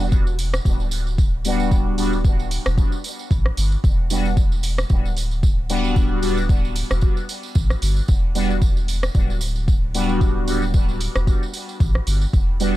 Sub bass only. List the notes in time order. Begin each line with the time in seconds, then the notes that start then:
Already playing: E1
0.65 D1
2.66 E1
3.31 A1
3.57 G1
3.84 E1
4.90 D1
6.91 E1
7.56 A1
7.82 G1
8.09 E1
9.15 D1
11.16 E1
11.80 A1
12.07 G1
12.33 E1